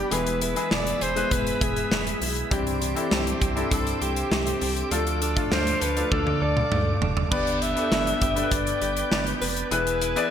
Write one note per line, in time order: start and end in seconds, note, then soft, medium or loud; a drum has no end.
0.00 0.14 G3 medium
0.00 0.11 B3 medium
0.00 0.71 B3 medium
0.00 0.14 D4 medium
0.00 0.18 D4 medium
0.00 0.14 G4 medium
0.00 0.18 G4 medium
0.11 0.55 E1 loud
0.11 2.51 E3 medium
0.11 0.42 G#3 medium
0.11 0.42 B3 medium
0.11 0.43 E4 medium
0.11 2.49 G#4 medium
0.11 0.43 G#4 medium
0.11 0.42 B4 loud
0.11 2.49 E5 medium
0.11 2.49 B5 medium
0.11 closed hi-hat medium
0.27 closed hi-hat soft
0.41 1.31 E4 medium
0.41 0.74 B4 medium
0.41 closed hi-hat medium
0.56 0.98 G#3 medium
0.56 0.98 B3 medium
0.56 0.98 E4 medium
0.56 0.98 G#4 medium
0.56 closed hi-hat soft
0.71 0.93 E1 loud
0.71 1.90 B3 medium
0.71 1.04 D5 loud
0.71 snare loud
0.87 closed hi-hat medium
1.01 1.23 E1 loud
1.01 1.60 G#4 medium
1.01 1.34 C5 loud
1.01 closed hi-hat medium
1.16 1.99 G#3 medium
1.16 2.00 B3 medium
1.16 2.00 E4 medium
1.16 2.00 B4 medium
1.16 closed hi-hat soft
1.31 1.53 E1 medium
1.31 2.21 E4 medium
1.31 1.64 B4 loud
1.31 kick medium
1.31 closed hi-hat medium
1.47 closed hi-hat medium
1.61 1.83 E1 loud
1.61 2.57 G#4 medium
1.61 2.25 G#4 medium
1.61 kick medium
1.61 closed hi-hat medium
1.76 closed hi-hat soft
1.91 2.13 E1 medium
1.91 2.57 B3 medium
1.91 snare loud
2.07 closed hi-hat soft
2.21 2.43 B1 medium
2.21 2.81 E4 medium
2.21 open hi-hat medium
2.37 closed hi-hat soft
2.51 2.95 C2 loud
2.51 4.91 E3 medium
2.51 2.82 C4 medium
2.51 2.82 D4 medium
2.51 2.83 E4 medium
2.51 2.83 G4 medium
2.51 2.66 G4 medium
2.51 4.89 C5 medium
2.51 4.89 E5 medium
2.51 9.68 D6 medium
2.51 kick loud
2.51 closed hi-hat medium
2.67 closed hi-hat soft
2.81 3.71 D4 medium
2.81 3.68 G4 medium
2.81 closed hi-hat medium
2.95 3.38 C4 medium
2.95 3.38 D4 medium
2.95 3.38 E4 medium
2.95 3.38 A4 medium
2.95 closed hi-hat soft
3.11 3.33 C2 loud
3.11 4.30 C4 medium
3.11 snare loud
3.27 closed hi-hat soft
3.41 3.63 C2 loud
3.41 4.00 G4 medium
3.41 kick medium
3.41 closed hi-hat medium
3.56 4.39 C4 medium
3.56 4.39 D4 medium
3.56 4.40 E4 medium
3.56 4.40 A4 medium
3.56 closed hi-hat soft
3.71 3.93 C2 loud
3.71 4.61 D4 medium
3.71 4.04 A4 medium
3.71 kick medium
3.71 closed hi-hat medium
3.87 closed hi-hat medium
4.01 4.23 C2 medium
4.01 4.98 G4 medium
4.01 4.94 G4 medium
4.01 closed hi-hat medium
4.16 closed hi-hat soft
4.31 4.53 C2 medium
4.31 4.98 C4 medium
4.31 snare medium
4.47 closed hi-hat soft
4.61 4.83 C2 medium
4.61 5.21 D4 medium
4.61 open hi-hat medium
4.77 closed hi-hat medium
4.91 5.35 D2 loud
4.91 7.31 F3 medium
4.91 5.22 A3 medium
4.91 5.23 D4 medium
4.91 5.23 F4 medium
4.91 7.29 A4 medium
4.91 5.23 A4 medium
4.91 5.22 A4 loud
4.91 7.29 F5 medium
4.91 closed hi-hat medium
5.07 closed hi-hat soft
5.22 6.11 D4 medium
5.22 5.54 A4 medium
5.22 closed hi-hat medium
5.36 5.78 A3 medium
5.36 5.78 D4 medium
5.36 5.78 F4 medium
5.36 5.78 A4 medium
5.36 kick medium
5.36 closed hi-hat soft
5.51 5.73 D2 loud
5.51 6.70 A3 medium
5.51 5.84 C5 loud
5.51 snare loud
5.67 closed hi-hat soft
5.81 6.03 D2 loud
5.81 6.40 A4 medium
5.81 6.14 B4 medium
5.81 closed hi-hat medium
5.96 6.79 A3 medium
5.96 6.80 D4 medium
5.96 6.80 F4 medium
5.96 6.80 A4 medium
5.96 closed hi-hat soft
6.12 6.33 D2 medium
6.12 7.01 D4 medium
6.12 6.44 A4 medium
6.12 kick medium
6.12 high tom medium
6.27 high tom medium
6.42 6.63 D2 medium
6.42 7.38 A4 medium
6.42 7.05 D5 loud
6.57 mid tom medium
6.72 6.93 D2 loud
6.72 7.31 A3 medium
6.72 mid tom medium
7.01 7.23 F1 medium
7.01 7.61 D4 medium
7.01 floor tom medium
7.17 floor tom medium
7.31 7.75 G1 loud
7.31 7.62 B3 medium
7.31 7.91 B3 medium
7.31 7.63 D4 medium
7.31 7.63 G4 medium
7.31 10.30 B4 medium
7.31 7.63 B4 medium
7.31 7.64 D5 loud
7.31 9.69 G5 medium
7.31 kick loud
7.31 crash medium
7.47 closed hi-hat soft
7.62 8.51 D4 medium
7.62 8.54 E5 loud
7.62 closed hi-hat medium
7.76 8.18 B3 medium
7.76 8.18 D4 medium
7.76 8.18 G4 medium
7.76 8.18 A4 medium
7.76 closed hi-hat soft
7.92 8.13 G1 loud
7.92 9.11 B3 medium
7.92 snare loud
8.07 closed hi-hat soft
8.21 8.43 G1 loud
8.21 8.81 G4 medium
8.21 kick medium
8.21 closed hi-hat medium
8.36 9.19 B3 medium
8.36 9.19 D4 medium
8.36 9.20 G4 medium
8.36 8.43 A4 medium
8.36 closed hi-hat soft
8.43 9.23 B4 medium
8.51 8.73 G1 loud
8.51 9.41 D4 medium
8.51 9.11 D5 loud
8.51 kick medium
8.51 closed hi-hat medium
8.67 closed hi-hat medium
8.82 9.03 G1 medium
8.82 9.78 G4 medium
8.82 closed hi-hat medium
8.97 closed hi-hat soft
9.12 9.33 G1 loud
9.12 10.30 B3 medium
9.12 9.25 D5 medium
9.12 snare medium
9.27 closed hi-hat soft
9.41 9.63 F1 medium
9.41 9.78 D4 medium
9.41 10.30 B4 loud
9.41 open hi-hat medium
9.56 closed hi-hat medium
9.71 10.15 E1 loud
9.71 10.30 E3 medium
9.71 10.02 B3 medium
9.71 10.03 E4 medium
9.71 10.03 G#4 medium
9.71 10.03 B4 medium
9.71 10.30 G#5 medium
9.71 10.30 E6 medium
9.71 closed hi-hat medium
9.87 closed hi-hat soft
10.02 10.30 E4 medium
10.02 closed hi-hat medium
10.16 10.30 B3 medium
10.16 10.30 E4 medium
10.16 10.30 G#4 medium
10.16 10.30 D5 loud
10.16 closed hi-hat medium